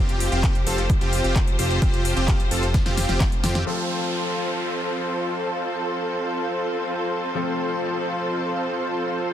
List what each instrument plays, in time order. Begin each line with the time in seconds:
Already playing: analog synth bass F1, string section F3 F4 G4 C5, supersaw synth C4 F4 G4
0.09 closed hi-hat
0.20 open hi-hat
0.32 analog synth bass F1, supersaw synth C4 F4 G4, closed hi-hat
0.44 kick, clap, closed hi-hat
0.55 closed hi-hat
0.66 analog synth bass F1, supersaw synth C4 F4 A4, open hi-hat
0.78 closed hi-hat
0.90 kick, closed hi-hat
1.01 analog synth bass F1, supersaw synth C4 F4 G4, closed hi-hat
1.13 open hi-hat
1.24 analog synth bass F1, supersaw synth C4 F4 G4, closed hi-hat
1.36 kick, clap, closed hi-hat
1.47 closed hi-hat
1.59 analog synth bass F1, supersaw synth C4 F4 G4, open hi-hat
1.70 closed hi-hat
1.82 analog synth bass F1, supersaw synth C4 F4 G4, kick, closed hi-hat
1.94 closed hi-hat
2.05 open hi-hat
2.17 analog synth bass F1, supersaw synth C4 F4 G4, closed hi-hat
2.28 kick, clap, closed hi-hat
2.40 closed hi-hat
2.51 analog synth bass F1, supersaw synth C4 F4 A4, open hi-hat
2.63 closed hi-hat
2.74 kick, snare, closed hi-hat
2.86 analog synth bass F1, supersaw synth C4 F4 G4, snare, closed hi-hat
2.97 snare, open hi-hat
3.09 analog synth bass F1, supersaw synth C4 F4 G4, snare, closed hi-hat
3.20 kick, snare, clap, closed hi-hat
3.32 closed hi-hat
3.43 analog synth bass F2, supersaw synth C4 F4 G4, snare, open hi-hat
3.55 snare, closed hi-hat
3.65 string section F2 F3 C4 A4, felt piano F3 A3 C4 A4, supersaw synth F4 A4 C5, crash, downlifter
7.35 felt piano F3 A3 C4 A4, supersaw synth F4 A4 C5